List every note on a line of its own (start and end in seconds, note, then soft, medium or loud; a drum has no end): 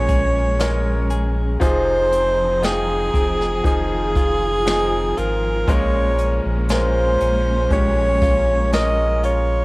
0.00 1.57 A#1 medium
0.00 1.61 A#2 medium
0.00 3.08 F3 medium
0.00 0.54 G#3 medium
0.00 0.59 G#3 medium
0.00 1.57 G#3 medium
0.00 1.57 A#3 medium
0.00 0.59 C#4 medium
0.00 0.60 C#4 medium
0.00 1.57 C#4 medium
0.00 0.55 G#4 medium
0.00 0.61 A#4 medium
0.00 1.35 C#5 loud
0.09 1.10 G#4 medium
0.09 kick medium
0.09 closed hi-hat medium
0.59 1.56 G#3 medium
0.59 1.71 C#4 medium
0.59 1.56 C#4 medium
0.59 1.57 A#4 medium
0.59 snare loud
0.59 closed hi-hat medium
1.10 1.61 G#4 medium
1.10 closed hi-hat medium
1.60 3.10 F1 medium
1.60 5.68 F2 medium
1.60 3.10 C3 medium
1.60 2.57 F3 medium
1.60 5.64 F3 medium
1.60 2.58 D#4 medium
1.60 3.63 D#4 medium
1.60 2.62 F4 medium
1.60 2.58 G#4 medium
1.60 5.64 G#4 medium
1.60 2.67 C5 loud
1.60 kick loud
1.60 closed hi-hat medium
2.12 3.13 C4 medium
2.12 closed hi-hat medium
2.62 3.59 F3 medium
2.62 3.59 D#4 medium
2.62 4.16 F4 medium
2.62 3.66 G#4 medium
2.62 3.60 G5 medium
2.62 snare loud
2.62 closed hi-hat medium
3.14 3.61 F1 medium
3.14 4.66 C4 medium
3.14 kick medium
3.14 closed hi-hat medium
3.41 snare soft
3.64 5.13 F1 loud
3.64 5.78 D#3 medium
3.64 4.61 F3 medium
3.64 4.61 D#4 medium
3.64 5.66 F4 medium
3.64 4.62 G#4 medium
3.64 5.20 G#4 loud
3.64 kick medium
3.64 closed hi-hat medium
4.16 5.17 F4 medium
4.16 kick medium
4.16 closed hi-hat medium
4.66 5.63 F3 medium
4.66 5.78 C4 medium
4.66 5.63 D#4 medium
4.66 5.63 G#4 medium
4.66 snare loud
4.66 closed hi-hat medium
5.17 5.65 G#1 medium
5.17 5.69 F4 medium
5.17 5.72 A#4 medium
5.17 closed hi-hat medium
5.68 6.40 A#1 loud
5.68 7.17 A#2 medium
5.68 9.65 A#2 medium
5.68 7.17 F3 medium
5.68 6.64 G#3 medium
5.68 9.65 G#3 medium
5.68 9.65 A#3 medium
5.68 9.65 C#4 medium
5.68 6.65 C#4 medium
5.68 6.70 F4 medium
5.68 6.65 A#4 loud
5.68 6.44 C#5 loud
5.68 kick loud
5.68 closed hi-hat medium
6.18 7.20 C#4 medium
6.18 closed hi-hat medium
6.45 7.17 A#1 loud
6.69 7.66 G#3 medium
6.69 7.67 C#4 medium
6.69 8.22 F4 medium
6.69 7.67 A#4 medium
6.69 7.68 C5 medium
6.69 snare loud
6.69 closed hi-hat medium
7.20 7.68 A#1 medium
7.20 8.73 C#4 medium
7.20 closed hi-hat medium
7.71 9.65 A#1 loud
7.71 9.65 F3 medium
7.71 8.68 G#3 medium
7.71 8.68 C#4 medium
7.71 8.68 G4 medium
7.71 8.70 C#5 loud
7.71 kick medium
7.71 closed hi-hat medium
8.22 9.23 F4 medium
8.22 kick medium
8.22 closed hi-hat medium
8.72 9.65 G#3 medium
8.72 9.65 C#4 medium
8.72 9.65 A#4 medium
8.72 9.21 D#5 loud
8.72 snare loud
8.72 closed hi-hat medium
9.23 9.65 F4 medium
9.23 9.65 C#5 medium
9.23 closed hi-hat medium